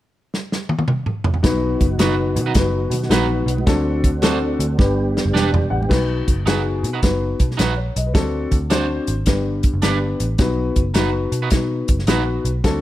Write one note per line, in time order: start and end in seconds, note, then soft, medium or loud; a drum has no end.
0.34 snare medium
0.52 snare medium
0.69 high tom medium
0.79 high tom medium
0.88 mid tom medium
1.06 mid tom medium
1.24 floor tom loud
1.34 floor tom medium
1.43 1.74 B1 loud
1.43 2.32 B2 medium
1.43 3.66 F#3 medium
1.43 1.84 B3 medium
1.43 3.66 B3 medium
1.43 1.84 D#4 medium
1.43 3.66 D#4 medium
1.43 1.84 F#4 medium
1.43 3.65 F#4 medium
1.43 1.84 B4 loud
1.43 kick loud
1.43 snare loud
1.43 closed hi-hat medium
1.80 1.96 F#1 medium
1.80 kick medium
1.80 closed hi-hat medium
1.80 muted conga soft
1.98 2.38 F#1 medium
1.98 2.40 B3 medium
1.98 2.40 D#4 medium
1.98 2.14 D#4 medium
1.98 2.40 F#4 medium
1.98 2.14 F#4 medium
1.98 2.40 B4 loud
1.98 2.15 B4 medium
1.98 snare loud
1.98 closed hi-hat medium
1.98 high conga medium
2.36 2.52 B2 loud
2.36 closed hi-hat medium
2.36 low conga medium
2.46 2.53 D#4 soft
2.46 2.52 F#4 soft
2.46 2.52 B4 medium
2.54 2.85 F#1 medium
2.54 2.96 B3 medium
2.54 2.96 D#4 medium
2.54 2.96 F#4 medium
2.54 2.96 B4 medium
2.54 kick medium
2.54 snare loud
2.54 closed hi-hat medium
2.54 muted conga soft
2.90 3.07 B2 medium
2.90 closed hi-hat medium
2.90 muted conga soft
2.90 low conga soft
3.03 snare soft
3.09 3.41 A#1 medium
3.09 3.51 B3 medium
3.09 3.51 D#4 medium
3.09 3.26 D#4 medium
3.09 3.51 F#4 medium
3.09 3.26 F#4 medium
3.09 3.52 B4 medium
3.09 3.26 B4 medium
3.09 snare loud
3.09 closed hi-hat medium
3.09 high conga medium
3.46 3.63 B1 loud
3.46 closed hi-hat medium
3.58 high conga medium
3.66 4.56 D2 loud
3.66 4.56 D3 medium
3.66 4.78 A3 medium
3.66 4.07 C4 loud
3.66 4.77 C4 medium
3.66 4.08 D4 medium
3.66 5.88 D4 medium
3.66 4.07 F#4 medium
3.66 4.77 F#4 medium
3.66 4.08 A4 loud
3.66 kick loud
3.66 snare loud
3.66 closed hi-hat medium
4.04 kick medium
4.04 closed hi-hat medium
4.04 muted conga soft
4.22 4.63 C4 medium
4.22 4.63 D4 medium
4.22 4.37 D4 medium
4.22 4.63 F#4 medium
4.22 4.38 F#4 medium
4.22 4.63 A4 medium
4.22 4.38 C5 medium
4.22 snare loud
4.22 closed hi-hat medium
4.22 high conga medium
4.59 4.75 D2 medium
4.59 closed hi-hat medium
4.78 5.17 G1 medium
4.78 5.67 G2 medium
4.78 5.90 G3 medium
4.78 5.19 B3 medium
4.78 5.90 B3 medium
4.78 5.19 D4 medium
4.78 5.19 G4 medium
4.78 5.90 G4 medium
4.78 5.20 B4 medium
4.78 kick medium
4.78 snare medium
4.78 muted conga medium
5.17 snare medium
5.17 muted conga soft
5.25 5.33 F#1 medium
5.34 5.65 E1 medium
5.34 5.49 D4 medium
5.34 5.49 G4 medium
5.34 5.50 B4 medium
5.34 snare medium
5.34 high conga medium
5.52 5.70 D5 medium
5.52 floor tom loud
5.70 5.87 A1 medium
5.70 5.80 F#5 medium
5.80 6.07 G5 medium
5.80 high conga medium
5.89 6.21 B1 loud
5.89 6.79 B2 medium
5.89 6.31 B3 medium
5.89 6.31 D#4 medium
5.89 6.31 F#4 medium
5.89 6.31 B4 medium
5.89 kick medium
5.89 snare loud
5.89 crash medium
6.27 6.43 F#1 medium
6.27 kick medium
6.27 closed hi-hat medium
6.46 6.85 F#1 medium
6.46 6.87 B3 medium
6.46 6.61 D#4 medium
6.46 6.88 D#4 medium
6.46 6.61 F#4 medium
6.46 6.88 F#4 medium
6.46 6.88 G#4 medium
6.46 6.62 B4 medium
6.46 snare loud
6.46 closed hi-hat medium
6.83 6.99 B2 medium
6.83 closed hi-hat medium
6.93 7.00 D#4 soft
6.93 7.00 F#4 medium
6.93 6.99 B4 medium
7.02 7.33 F#1 medium
7.02 7.43 B3 medium
7.02 7.44 D#4 medium
7.02 7.44 F#4 medium
7.02 7.44 B4 medium
7.02 kick medium
7.02 snare loud
7.02 closed hi-hat medium
7.39 7.55 B2 medium
7.39 kick medium
7.39 closed hi-hat medium
7.51 snare soft
7.57 7.89 A#1 medium
7.57 7.73 D#4 medium
7.57 7.73 F#4 medium
7.57 7.76 B4 medium
7.57 7.74 B4 medium
7.57 snare medium
7.57 closed hi-hat medium
7.77 7.95 C#5 medium
7.96 8.15 B1 medium
7.96 8.06 D#5 medium
7.96 closed hi-hat medium
8.06 8.33 B4 medium
8.14 8.45 D2 loud
8.14 9.04 D3 medium
8.14 8.55 C4 medium
8.14 8.55 D4 medium
8.14 8.55 F#4 medium
8.14 8.56 A4 loud
8.14 kick loud
8.14 snare loud
8.14 closed hi-hat medium
8.51 8.98 D2 medium
8.51 kick medium
8.51 closed hi-hat medium
8.70 9.11 C4 medium
8.70 8.85 D4 medium
8.70 9.11 D4 medium
8.70 9.12 F#4 medium
8.70 8.86 F#4 medium
8.70 9.12 C5 medium
8.70 8.86 C5 medium
8.70 snare loud
8.70 closed hi-hat medium
9.07 9.24 G#1 medium
9.07 closed hi-hat medium
9.26 9.65 G1 medium
9.26 10.16 G2 medium
9.26 9.67 B3 medium
9.26 9.67 D4 medium
9.26 9.68 G4 medium
9.26 9.68 B4 medium
9.26 kick medium
9.26 snare loud
9.26 closed hi-hat medium
9.63 kick medium
9.63 closed hi-hat medium
9.74 9.81 F#1 medium
9.82 10.14 G1 medium
9.82 10.23 B3 medium
9.82 9.97 D4 medium
9.82 10.24 D4 medium
9.82 10.24 G4 medium
9.82 9.98 G4 medium
9.82 10.24 B4 medium
9.82 9.98 B4 medium
9.82 snare medium
9.82 closed hi-hat medium
10.20 10.36 A1 medium
10.20 closed hi-hat medium
10.38 10.69 B1 loud
10.38 11.28 B2 medium
10.38 10.80 B3 medium
10.38 10.80 D#4 medium
10.38 10.80 F#4 medium
10.38 10.80 B4 loud
10.38 kick loud
10.38 snare loud
10.38 closed hi-hat medium
10.76 10.92 F#1 medium
10.76 kick medium
10.76 closed hi-hat medium
10.94 11.26 F#1 medium
10.94 11.36 B3 medium
10.94 11.09 D#4 medium
10.94 11.36 D#4 medium
10.94 11.10 F#4 medium
10.94 11.36 F#4 medium
10.94 11.10 B4 medium
10.94 11.37 B4 medium
10.94 snare loud
10.94 closed hi-hat medium
11.32 11.48 B2 medium
11.32 closed hi-hat medium
11.42 11.49 D#4 soft
11.42 11.48 F#4 soft
11.42 11.48 B4 medium
11.50 11.82 B2 loud
11.50 11.92 B3 medium
11.50 11.92 D#4 medium
11.50 11.92 F#4 medium
11.50 11.93 B4 medium
11.50 kick medium
11.50 snare loud
11.50 closed hi-hat medium
11.88 12.04 F#1 medium
11.88 kick medium
11.88 closed hi-hat medium
11.99 snare soft
12.07 12.37 A#1 medium
12.07 12.48 B3 medium
12.07 12.22 D#4 medium
12.07 12.49 D#4 medium
12.07 12.22 F#4 medium
12.07 12.49 F#4 medium
12.07 12.49 B4 medium
12.07 12.23 B4 medium
12.07 snare medium
12.07 closed hi-hat medium
12.45 12.60 B1 medium
12.45 closed hi-hat medium
12.64 12.81 D2 loud
12.64 12.81 D3 medium
12.64 12.81 C4 medium
12.64 12.81 D4 medium
12.64 12.81 F#4 medium
12.64 12.81 A4 loud
12.64 kick medium
12.64 snare loud
12.64 closed hi-hat medium